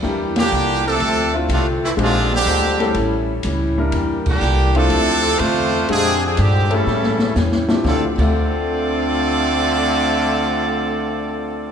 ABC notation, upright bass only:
X:1
M:4/4
L:1/8
Q:"Swing" 1/4=123
K:Dm
V:1 name="Upright bass" clef=bass
E,,2 C,,2 D,,2 C,,2 | B,,,2 D,,2 A,,,2 ^C,,2 | E,,2 C,,2 D,,2 E,,2 | F,,2 G,,2 A,,2 E,,2 |
D,, D,,6- D,,- | D,,8 |]